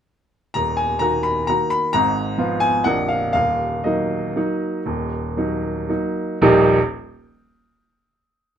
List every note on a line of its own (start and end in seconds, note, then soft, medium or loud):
0.54 1.00 D#1 soft
0.54 1.00 D#2 soft
0.54 0.77 A#5 medium
0.77 1.00 G#5 medium
0.99 1.44 D#3 soft
0.99 1.44 A#3 soft
0.99 1.45 F#4 soft
0.99 1.24 A#5 medium
1.23 1.48 B5 medium
1.47 1.90 D#3 soft
1.47 1.90 A#3 soft
1.47 1.90 F#4 soft
1.47 1.71 A#5 medium
1.70 1.93 B5 medium
1.93 2.37 G#1 medium
1.93 2.37 G#2 medium
1.93 2.61 A#5 loud
2.38 2.82 F3 soft
2.38 2.82 B3 soft
2.38 2.82 F4 medium
2.60 2.85 G#5 medium
2.84 3.33 A#0 soft
2.84 3.33 A#1 soft
2.84 3.30 F3 soft
2.84 3.31 A#3 soft
2.84 3.31 D4 soft
2.84 3.09 F#5 medium
3.08 3.31 F5 medium
3.33 3.83 D#1 soft
3.33 3.83 D#2 soft
3.33 3.84 F5 medium
3.84 4.32 F#3 soft
3.84 4.32 A#3 soft
3.84 4.32 D#4 soft
3.84 6.15 D#5 medium
4.36 4.82 F#3 soft
4.36 4.82 A#3 soft
4.36 4.82 D#4 soft
4.86 5.35 D#1 soft
4.86 5.35 D#2 soft
5.37 5.85 F#3 soft
5.37 5.85 A#3 soft
5.37 5.85 D#4 soft
5.89 6.37 F#3 soft
5.89 6.37 A#3 soft
5.89 6.38 D#4 soft
6.42 6.68 D#1 medium
6.42 6.69 A#1 medium
6.42 6.69 G3 medium
6.42 6.69 A#3 medium
6.42 6.69 D#4 medium
6.42 6.69 G4 medium